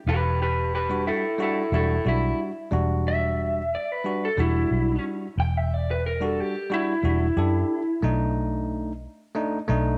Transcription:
0.06 1.09 E1 loud
0.06 0.41 G4 medium
0.06 0.40 B4 loud
0.42 0.72 G4 medium
0.42 0.73 B4 medium
0.75 1.05 G4 medium
0.75 1.06 B4 medium
0.89 1.23 G3 medium
0.89 1.23 D4 medium
0.89 1.23 F#4 medium
1.07 1.38 E4 medium
1.07 1.39 A4 medium
1.38 1.61 G3 medium
1.38 1.62 D4 medium
1.38 1.72 E4 medium
1.38 1.62 F#4 medium
1.43 1.73 A4 medium
1.72 1.98 E1 medium
1.72 1.95 G3 medium
1.72 1.95 D4 medium
1.72 2.04 E4 medium
1.72 1.96 F#4 medium
1.72 2.06 A4 medium
2.05 2.31 B1 medium
2.05 2.50 G3 medium
2.05 2.50 D4 medium
2.05 2.39 E4 medium
2.05 2.51 F#4 medium
2.71 3.75 E1 loud
2.71 3.60 G3 medium
2.71 3.61 D4 medium
2.71 3.61 F#4 loud
3.08 3.71 E5 loud
3.75 3.92 D5 medium
3.92 4.23 B4 medium
4.04 4.27 G3 medium
4.04 4.27 D4 medium
4.04 4.28 F#4 medium
4.25 4.39 A4 medium
4.37 4.64 E1 medium
4.37 5.26 G3 medium
4.37 5.27 D4 medium
4.37 5.03 E4 loud
4.37 5.27 F#4 medium
4.71 4.97 B1 medium
5.38 6.40 E1 loud
5.38 5.57 G5 medium
5.57 5.74 E5 medium
5.74 5.89 D5 medium
5.91 6.05 B4 medium
6.06 6.24 A#4 loud
6.21 6.54 G3 medium
6.21 6.54 D4 medium
6.21 6.55 F#4 medium
6.21 6.40 A4 medium
6.40 6.71 G4 medium
6.70 6.93 G3 medium
6.70 6.93 D4 medium
6.70 8.01 E4 loud
6.70 6.94 F#4 medium
7.03 7.29 E1 medium
7.03 7.26 G3 medium
7.03 7.26 D4 medium
7.03 7.27 F#4 medium
7.37 7.62 F#2 medium
7.37 7.81 D4 medium
7.37 7.81 G4 medium
7.37 7.82 A4 medium
8.02 9.05 B1 loud
8.02 8.91 A3 medium
8.02 8.91 D4 medium
8.02 8.92 D#4 loud
9.35 9.58 A3 medium
9.35 9.58 D4 medium
9.35 9.58 D#4 loud
9.68 9.95 B1 medium
9.68 9.98 A3 medium
9.68 9.98 D4 medium
9.68 9.98 D#4 loud

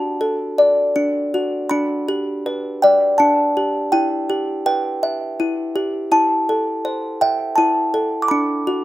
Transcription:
0.00 0.95 D4 medium
0.00 1.33 F#4 medium
0.00 0.92 A5 medium
0.21 1.71 A4 medium
0.58 1.71 D5 medium
0.96 1.70 D4 medium
1.34 1.71 F#4 medium
1.70 3.19 D4 medium
1.70 2.41 B5 medium
2.08 3.56 G4 medium
2.46 3.93 B4 medium
2.82 3.93 D5 medium
2.82 3.21 G5 medium
3.18 3.93 D4 medium
3.18 3.88 A5 medium
3.57 3.93 G4 medium
3.92 5.38 E4 medium
3.92 4.61 G5 medium
4.30 5.74 G4 medium
4.66 6.12 B4 medium
4.66 5.71 G5 medium
5.03 6.12 E5 medium
5.40 6.10 E4 medium
5.76 6.12 G4 medium
6.12 7.56 E4 medium
6.12 6.80 A5 medium
6.49 7.93 A4 medium
6.85 8.30 C5 medium
7.21 8.30 E5 medium
7.21 7.58 G5 medium
7.56 8.30 E4 medium
7.56 8.24 A5 medium
7.94 8.30 A4 medium
8.22 8.29 D6 medium
8.28 8.84 D4 medium
8.28 8.84 B5 medium
8.67 8.84 F#4 medium

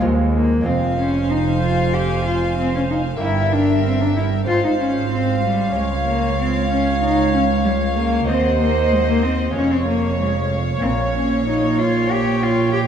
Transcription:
0.00 0.63 D#2 medium
0.00 0.61 D#2 medium
0.00 0.41 G#3 medium
0.00 0.60 G#3 soft
0.00 0.61 C4 soft
0.00 0.62 F4 soft
0.34 0.67 A#3 medium
0.61 3.16 F1 medium
0.61 3.16 F2 soft
0.61 3.14 G#3 soft
0.61 3.15 C4 soft
0.61 3.16 F4 soft
0.61 3.16 F5 soft
0.61 3.16 G#5 soft
0.65 3.17 F2 soft
0.65 0.97 C4 medium
0.65 3.16 C5 soft
0.98 1.31 C#4 medium
1.30 1.61 D#4 medium
1.62 1.95 F4 medium
1.94 2.25 G4 medium
2.25 2.56 F4 medium
2.58 2.73 C4 medium
2.75 2.81 C#4 medium
2.90 2.98 D#4 medium
3.17 4.45 G1 soft
3.17 4.45 G2 soft
3.17 4.44 G2 soft
3.17 4.42 A#3 soft
3.17 4.43 E4 soft
3.17 3.54 E4 medium
3.17 4.45 A#4 soft
3.17 4.47 E5 soft
3.17 4.45 G5 soft
3.53 3.84 D4 medium
3.84 4.03 C4 medium
4.01 4.16 D4 medium
4.16 4.24 E4 medium
4.45 5.75 G#1 soft
4.45 5.75 G#2 soft
4.45 5.71 G#2 soft
4.45 5.70 C4 soft
4.45 5.71 F4 soft
4.45 4.63 F4 medium
4.45 5.72 C5 soft
4.45 8.24 F5 soft
4.65 4.71 D#4 medium
4.79 5.10 C#4 medium
5.10 5.42 C4 medium
5.43 5.77 G3 medium
5.72 8.24 C#2 medium
5.72 8.24 C#2 soft
5.72 6.07 G#3 soft
5.72 8.23 C#4 soft
5.72 8.24 F4 soft
5.72 8.24 C#5 medium
6.07 6.38 A#3 medium
6.39 6.70 C4 medium
6.71 7.02 C#4 medium
7.02 7.33 D#4 medium
7.34 7.42 C#4 medium
7.65 7.71 G3 medium
7.81 7.95 G#3 soft
7.96 8.30 A#3 medium
8.26 9.55 D#2 soft
8.26 9.51 D#2 soft
8.26 9.55 D#2 medium
8.26 9.50 C4 soft
8.26 8.60 C4 medium
8.26 9.51 D#4 soft
8.26 9.55 C5 medium
8.26 9.52 D#5 medium
8.26 9.53 F#5 soft
8.60 8.93 A#3 medium
8.92 9.07 G#3 medium
9.08 9.24 A#3 medium
9.23 9.54 C4 medium
9.51 10.79 F2 soft
9.51 10.76 G#3 soft
9.51 10.77 C#4 soft
9.51 9.73 C#4 medium
9.51 12.87 C#5 medium
9.51 12.04 F5 soft
9.56 10.80 F1 soft
9.56 10.78 F2 soft
9.71 9.87 C4 medium
9.87 10.18 A#3 medium
10.20 10.50 G#3 medium
10.79 12.87 A#1 medium
10.79 12.87 A#2 soft
10.79 10.89 C4 medium
10.79 12.03 C#4 soft
11.15 11.45 C#4 medium
11.46 11.80 D#4 medium
11.79 12.13 F4 medium
12.07 12.87 C#4 soft
12.07 12.87 G5 medium
12.11 12.44 G4 medium
12.43 12.72 F4 medium
12.73 12.79 G4 medium

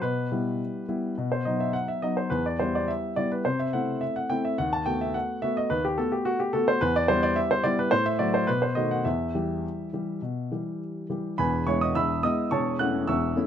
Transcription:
0.02 0.30 B2 medium
0.02 1.31 B4 medium
0.32 0.85 G3 soft
0.32 0.85 B3 soft
0.32 0.85 E4 soft
0.89 1.14 G3 soft
0.89 1.14 B3 soft
0.89 1.14 E4 soft
1.18 1.45 B2 soft
1.32 1.46 C5 medium
1.45 1.99 F#3 soft
1.45 1.99 B3 soft
1.45 1.99 D#4 soft
1.45 1.59 D#5 medium
1.60 1.74 E5 medium
1.73 1.88 F#5 medium
1.88 2.02 E5 medium
2.02 2.29 F#3 soft
2.02 2.29 B3 soft
2.02 2.29 D#4 soft
2.02 2.17 D#5 medium
2.17 2.31 C5 medium
2.30 2.59 E2 soft
2.30 2.45 B4 medium
2.46 2.60 D5 medium
2.59 3.13 G3 soft
2.59 3.13 B3 soft
2.59 3.14 E4 soft
2.59 2.74 C5 medium
2.75 2.89 D5 medium
2.88 3.17 E5 medium
3.16 3.42 G3 soft
3.16 3.43 B3 soft
3.16 3.43 E4 soft
3.16 3.31 D5 medium
3.32 3.46 B4 medium
3.45 3.73 C3 soft
3.45 3.59 C5 medium
3.59 3.74 E5 medium
3.73 4.26 A3 soft
3.73 4.26 C4 soft
3.73 4.26 E4 soft
3.73 4.02 F#5 medium
4.01 4.15 E5 medium
4.16 4.30 F#5 medium
4.30 4.55 A3 soft
4.30 4.56 C4 soft
4.30 4.56 E4 soft
4.30 4.44 G5 medium
4.45 4.58 E5 medium
4.58 4.86 D#2 medium
4.58 4.72 F#5 medium
4.73 4.86 A5 medium
4.86 5.39 A3 soft
4.86 5.39 B3 soft
4.86 5.39 F#4 soft
4.86 5.00 G5 medium
5.01 5.15 E5 medium
5.14 5.42 F#5 medium
5.42 5.68 A3 soft
5.42 5.68 B3 soft
5.42 5.68 F#4 soft
5.42 5.56 E5 medium
5.57 5.71 D#5 medium
5.70 5.97 D#2 soft
5.70 5.84 B4 medium
5.85 5.98 G4 medium
5.98 6.50 A3 soft
5.98 6.50 B3 soft
5.98 6.24 F#4 soft
5.98 6.12 A4 medium
6.12 6.26 G4 medium
6.25 6.39 F#4 medium
6.40 6.53 G4 medium
6.53 6.78 A3 soft
6.53 6.79 B3 soft
6.53 6.79 F#4 soft
6.53 6.67 A4 medium
6.68 6.81 C5 medium
6.81 7.08 E2 medium
6.81 6.95 B4 medium
6.96 7.09 D5 medium
7.08 7.60 G3 soft
7.08 7.61 B3 soft
7.08 7.61 E4 soft
7.08 7.22 C5 medium
7.23 7.37 D5 medium
7.36 7.50 E5 medium
7.51 7.64 C5 medium
7.64 7.89 G3 soft
7.64 7.89 B3 soft
7.64 7.90 E4 medium
7.64 7.78 D5 medium
7.79 7.92 B4 medium
7.91 8.19 A2 medium
7.91 8.05 C5 medium
8.06 8.20 E5 medium
8.19 8.45 F#3 soft
8.19 8.45 A3 soft
8.19 8.45 F#4 soft
8.19 8.33 D5 medium
8.34 8.48 C5 medium
8.47 8.76 B2 medium
8.47 8.62 B4 medium
8.62 8.76 C5 medium
8.75 9.02 D#3 soft
8.75 9.02 A3 soft
8.75 9.03 F#4 soft
8.75 8.90 D#5 medium
8.91 9.06 F#5 medium
9.05 9.34 E2 medium
9.05 10.80 E5 medium
9.35 9.89 E3 soft
9.35 9.89 G3 soft
9.35 9.89 G4 soft
9.93 10.19 E3 soft
9.93 10.20 G3 soft
9.93 10.20 G4 soft
10.22 10.50 B2 soft
10.52 11.06 E3 soft
10.52 11.06 G3 soft
10.52 11.06 G4 soft
11.10 11.36 E3 soft
11.10 11.36 G3 soft
11.10 11.36 G4 soft
11.38 11.66 E1 medium
11.38 11.66 E2 medium
11.38 11.66 B4 medium
11.38 11.66 G#5 medium
11.38 11.67 B5 medium
11.67 11.93 G#3 soft
11.67 11.93 B3 soft
11.67 11.93 E4 soft
11.67 11.81 C#5 medium
11.67 11.81 C#6 medium
11.81 11.95 D#5 medium
11.81 11.96 D#6 medium
11.95 12.23 E1 medium
11.95 12.23 E2 medium
11.95 12.22 E5 medium
11.95 12.22 B5 medium
11.95 12.24 E6 medium
12.23 12.49 G#3 soft
12.23 12.49 B3 soft
12.23 12.49 E4 soft
12.23 12.50 D#5 medium
12.23 12.51 D#6 medium
12.51 12.79 E1 soft
12.51 12.79 E2 medium
12.51 12.78 C#5 medium
12.51 12.78 A5 medium
12.51 12.79 C#6 medium
12.79 13.05 A3 soft
12.79 13.05 C#4 soft
12.79 13.06 E4 soft
12.79 13.06 F#5 medium
12.79 13.08 F#6 medium
13.07 13.35 E1 medium
13.07 13.36 E2 medium
13.07 13.47 E5 medium
13.07 13.47 C#6 medium
13.07 13.47 E6 medium
13.36 13.47 A3 soft
13.36 13.47 C#4 soft
13.36 13.47 E4 soft

